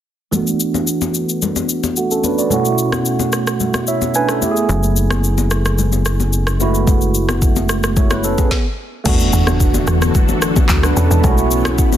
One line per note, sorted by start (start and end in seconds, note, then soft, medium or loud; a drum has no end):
0.31 2.46 E3 medium
0.31 1.93 A3 medium
0.31 1.94 B3 medium
0.31 1.94 D4 medium
0.31 low conga medium
0.31 shaker medium
0.36 1.95 F#4 medium
0.47 shaker medium
0.60 shaker loud
0.74 high conga medium
0.74 shaker soft
0.87 shaker medium
1.01 high conga medium
1.01 shaker medium
1.14 shaker medium
1.29 shaker medium
1.42 low conga medium
1.42 shaker medium
1.56 high conga medium
1.56 shaker soft
1.69 shaker medium
1.84 high conga medium
1.84 shaker medium
1.96 2.11 A3 medium
1.96 2.10 F#4 medium
1.96 shaker medium
2.11 2.24 C#4 medium
2.11 2.24 A4 medium
2.11 shaker medium
2.24 2.38 D4 medium
2.24 2.38 B4 medium
2.24 high conga medium
2.24 shaker medium
2.38 2.52 F#4 medium
2.38 2.64 D5 medium
2.38 shaker medium
2.49 4.37 B2 medium
2.49 4.38 A3 medium
2.49 3.85 C#4 medium
2.49 3.85 E4 medium
2.49 low conga medium
2.49 shaker medium
2.54 3.86 F#4 medium
2.65 shaker medium
2.78 shaker loud
2.92 cross-stick medium
2.92 high conga medium
2.92 shaker soft
3.05 shaker medium
3.19 high conga medium
3.19 shaker medium
3.32 cross-stick medium
3.32 shaker medium
3.47 cross-stick medium
3.47 shaker medium
3.60 low conga medium
3.60 shaker medium
3.74 cross-stick medium
3.74 high conga medium
3.74 shaker soft
3.87 4.14 E4 medium
3.87 4.14 C#5 medium
3.87 4.13 E5 medium
3.87 shaker medium
4.01 high conga medium
4.01 shaker medium
4.14 4.29 D4 medium
4.14 4.29 B4 medium
4.14 4.66 G#5 medium
4.14 shaker medium
4.29 4.55 A4 medium
4.29 cross-stick medium
4.29 shaker medium
4.40 6.55 A3 medium
4.40 6.56 B3 medium
4.40 6.57 E4 medium
4.40 high conga medium
4.40 shaker medium
4.45 4.50 G4 medium
4.51 6.61 G#4 medium
4.56 shaker medium
4.69 8.47 F#1 medium
4.69 low conga medium
4.69 shaker medium
4.83 shaker medium
4.96 shaker loud
5.11 cross-stick medium
5.11 high conga medium
5.11 shaker soft
5.24 shaker medium
5.38 high conga medium
5.38 shaker medium
5.51 cross-stick medium
5.51 shaker medium
5.65 cross-stick medium
5.65 shaker medium
5.78 low conga medium
5.78 shaker medium
5.92 high conga medium
5.92 shaker medium
6.06 cross-stick medium
6.06 shaker medium
6.20 high conga medium
6.20 shaker medium
6.33 shaker medium
6.47 cross-stick medium
6.47 shaker medium
6.59 6.66 G#3 medium
6.59 7.94 B3 medium
6.59 7.95 E4 medium
6.59 high conga medium
6.59 shaker medium
6.63 8.50 A3 medium
6.63 7.95 F#4 medium
6.75 shaker medium
6.87 kick loud
6.87 low conga medium
6.87 shaker medium
7.01 shaker medium
7.14 shaker loud
7.29 cross-stick medium
7.29 high conga medium
7.29 shaker soft
7.42 kick loud
7.42 shaker medium
7.56 high conga medium
7.56 shaker medium
7.69 cross-stick medium
7.69 shaker medium
7.83 cross-stick medium
7.83 shaker medium
7.96 8.11 E4 medium
7.96 8.10 C#5 medium
7.96 kick loud
7.96 low conga medium
7.96 shaker medium
8.10 8.23 B4 medium
8.10 cross-stick loud
8.10 high conga medium
8.10 shaker soft
8.24 8.38 C#4 medium
8.24 8.38 A4 medium
8.24 shaker medium
8.38 8.65 B3 medium
8.38 8.64 G#4 medium
8.38 kick medium
8.38 high conga medium
8.38 shaker medium
8.51 kick loud
8.51 snare medium
9.04 9.29 E2 loud
9.04 11.22 E3 medium
9.04 10.38 A3 medium
9.04 10.39 B3 medium
9.04 11.97 B3 medium
9.04 11.22 D4 medium
9.04 10.40 D4 medium
9.04 11.22 F#4 medium
9.04 11.22 A4 medium
9.04 kick loud
9.04 crash loud
9.04 impact medium
9.04 low conga medium
9.04 shaker medium
9.08 10.41 F#4 medium
9.20 shaker medium
9.33 9.79 E2 loud
9.33 shaker loud
9.47 cross-stick medium
9.47 high conga medium
9.47 shaker soft
9.60 kick loud
9.60 shaker medium
9.74 high conga medium
9.74 shaker medium
9.87 10.11 E2 loud
9.87 cross-stick medium
9.87 shaker medium
10.02 cross-stick medium
10.02 high conga medium
10.02 shaker medium
10.15 kick loud
10.15 low conga medium
10.15 shaker medium
10.29 high conga medium
10.29 shaker medium
10.42 cross-stick loud
10.42 shaker medium
10.56 kick loud
10.56 high conga medium
10.56 shaker medium
10.69 10.93 D2 loud
10.69 kick medium
10.69 clap medium
10.69 low conga medium
10.69 shaker medium
10.83 10.97 D4 medium
10.83 10.96 B4 medium
10.83 cross-stick medium
10.83 shaker medium
10.97 11.09 E2 medium
10.97 11.11 C#4 medium
10.97 11.10 A4 medium
10.97 high conga medium
10.97 shaker medium
11.11 11.22 E2 medium
11.11 11.37 G#3 medium
11.11 11.30 E4 medium
11.11 shaker medium
11.22 11.97 B1 loud
11.22 11.97 A3 medium
11.22 11.97 C#4 medium
11.22 11.31 D4 medium
11.22 11.97 E4 medium
11.22 kick loud
11.22 low conga medium
11.22 shaker medium
11.27 11.97 F#4 medium
11.32 11.97 E4 medium
11.38 shaker medium
11.51 shaker loud
11.65 cross-stick loud
11.65 high conga medium
11.65 shaker soft
11.78 kick loud
11.78 shaker medium
11.92 high conga medium
11.92 shaker medium